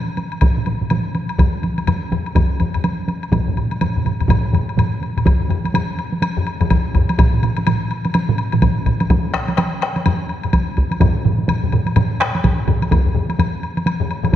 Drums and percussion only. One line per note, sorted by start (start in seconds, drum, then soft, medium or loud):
0.08 taiko high soft
0.17 taiko high soft
0.17 high woodblock soft
0.32 taiko high soft
0.32 high woodblock soft
0.41 taiko medium
0.41 taiko mid medium
0.41 taiko high medium
0.41 high woodblock medium
0.57 taiko mid medium
0.57 taiko high soft
0.66 taiko mid medium
0.66 taiko high medium
0.66 high woodblock soft
0.81 taiko mid medium
0.81 taiko high soft
0.90 taiko mid medium
0.90 taiko high medium
0.90 high woodblock soft
1.05 taiko high soft
1.15 taiko high soft
1.15 high woodblock soft
1.29 taiko high soft
1.29 high woodblock soft
1.38 taiko medium
1.38 taiko low-mid medium
1.38 taiko high medium
1.38 high woodblock soft
1.54 taiko high soft
1.63 taiko high medium
1.63 high woodblock soft
1.78 taiko high soft
1.78 high woodblock soft
1.87 taiko low-mid medium
1.87 taiko high medium
1.87 high woodblock soft
2.02 taiko high soft
2.12 taiko low-mid medium
2.12 taiko high medium
2.12 high woodblock soft
2.26 taiko high soft
2.26 high woodblock soft
2.36 taiko medium
2.36 taiko low-mid medium
2.36 taiko high medium
2.36 high woodblock medium
2.60 taiko low-mid medium
2.60 taiko high soft
2.60 high woodblock soft
2.74 taiko low-mid medium
2.74 high woodblock soft
2.84 taiko high medium
2.84 high woodblock soft
2.99 taiko high soft
3.08 taiko high medium
3.08 high woodblock soft
3.23 taiko high soft
3.23 high woodblock soft
3.32 taiko medium
3.32 taiko low-mid medium
3.32 taiko mid medium
3.32 taiko high medium
3.32 high woodblock soft
3.47 taiko low-mid medium
3.47 taiko mid medium
3.47 taiko high soft
3.57 taiko low-mid medium
3.57 taiko mid medium
3.57 high woodblock soft
3.71 taiko high soft
3.71 high woodblock soft
3.81 taiko low-mid medium
3.81 taiko mid medium
3.81 taiko high medium
3.81 high woodblock soft
3.96 taiko low-mid medium
3.96 taiko mid medium
3.96 taiko high soft
4.05 taiko low-mid medium
4.05 taiko mid medium
4.05 taiko high medium
4.05 high woodblock soft
4.20 taiko low-mid medium
4.20 taiko mid medium
4.20 taiko high soft
4.20 high woodblock soft
4.28 taiko medium
4.28 taiko low-mid medium
4.28 taiko mid medium
4.28 taiko high medium
4.28 high woodblock medium
4.44 taiko high soft
4.53 taiko low-mid medium
4.53 taiko mid medium
4.53 taiko high soft
4.53 high woodblock soft
4.68 taiko high soft
4.68 high woodblock soft
4.78 taiko low-mid medium
4.78 taiko mid medium
4.78 taiko high medium
4.78 high woodblock soft
5.02 taiko high soft
5.02 high woodblock soft
5.17 taiko low-mid medium
5.17 taiko mid medium
5.17 taiko high soft
5.17 high woodblock soft
5.26 taiko medium
5.26 taiko low-mid medium
5.26 taiko high medium
5.26 high woodblock soft
5.41 taiko low-mid medium
5.50 taiko low-mid medium
5.50 high woodblock soft
5.65 taiko high soft
5.65 high woodblock soft
5.74 taiko low-mid medium
5.74 taiko high medium
5.74 high woodblock medium
5.99 high woodblock soft
6.12 taiko high soft
6.22 taiko high medium
6.22 high woodblock medium
6.37 taiko low-mid medium
6.47 high woodblock soft
6.61 taiko low-mid loud
6.61 taiko high soft
6.61 high woodblock soft
6.70 taiko medium
6.70 taiko low-mid medium
6.70 taiko high medium
6.70 high woodblock medium
6.95 taiko medium
6.95 taiko low-mid loud
6.95 high woodblock soft
7.09 taiko high medium
7.09 high woodblock soft
7.19 taiko loud
7.19 taiko mid medium
7.19 taiko high medium
7.19 high woodblock medium
7.33 taiko mid medium
7.43 taiko mid loud
7.43 high woodblock soft
7.57 taiko high soft
7.57 high woodblock soft
7.66 taiko mid medium
7.66 taiko high medium
7.66 high woodblock medium
7.91 high woodblock soft
8.05 taiko high medium
8.05 high woodblock soft
8.14 taiko high medium
8.14 high woodblock medium
8.29 taiko mid loud
8.38 high woodblock soft
8.52 taiko mid medium
8.52 taiko high medium
8.52 high woodblock soft
8.62 taiko medium
8.62 taiko mid medium
8.62 taiko high medium
8.62 high woodblock soft
8.86 taiko medium
8.86 taiko mid medium
8.86 high woodblock soft
9.00 taiko high medium
9.00 high woodblock soft
9.10 taiko loud
9.10 taiko low-mid loud
9.10 taiko high medium
9.10 high woodblock soft
9.34 taiko rim medium
9.34 high woodblock soft
9.48 taiko high medium
9.48 high woodblock soft
9.58 taiko rim medium
9.58 taiko high medium
9.58 high woodblock medium
9.82 taiko rim medium
9.82 high woodblock soft
9.96 taiko high medium
9.96 high woodblock soft
10.06 taiko low-mid loud
10.06 taiko high medium
10.06 high woodblock medium
10.29 high woodblock soft
10.43 taiko low-mid medium
10.43 high woodblock soft
10.53 taiko medium
10.53 taiko high medium
10.53 high woodblock soft
10.77 taiko medium
10.77 high woodblock soft
10.91 taiko high medium
10.91 high woodblock soft
11.00 taiko loud
11.00 taiko low-mid loud
11.00 taiko mid medium
11.00 taiko high medium
11.00 high woodblock soft
11.24 taiko low-mid medium
11.24 taiko mid medium
11.24 taiko high soft
11.39 taiko high soft
11.48 taiko low-mid medium
11.48 taiko mid medium
11.48 taiko high medium
11.48 high woodblock medium
11.64 taiko low-mid medium
11.64 taiko mid medium
11.72 taiko low-mid medium
11.72 taiko mid medium
11.72 high woodblock soft
11.86 taiko high medium
11.86 high woodblock soft
11.96 taiko low-mid loud
11.96 taiko mid loud
11.96 taiko high medium
11.96 high woodblock medium
12.21 taiko rim medium
12.21 high woodblock soft
12.35 taiko high medium
12.35 high woodblock soft
12.44 taiko medium
12.44 taiko low-mid medium
12.44 taiko mid medium
12.44 taiko high medium
12.44 high woodblock soft
12.68 taiko medium
12.68 taiko low-mid loud
12.68 taiko mid medium
12.68 high woodblock soft
12.82 taiko high medium
12.82 high woodblock soft
12.91 taiko loud
12.91 taiko low-mid medium
12.91 taiko high medium
12.91 high woodblock medium
13.06 taiko low-mid medium
13.15 taiko low-mid medium
13.29 taiko high medium
13.29 high woodblock soft
13.39 taiko low-mid medium
13.39 taiko high medium
13.39 high woodblock medium
13.63 high woodblock soft
13.77 taiko high medium
13.77 high woodblock soft
13.86 taiko high medium
13.86 high woodblock medium
14.00 taiko low-mid medium
14.11 high woodblock soft
14.24 taiko low-mid loud
14.24 taiko high medium
14.24 high woodblock soft
14.32 taiko medium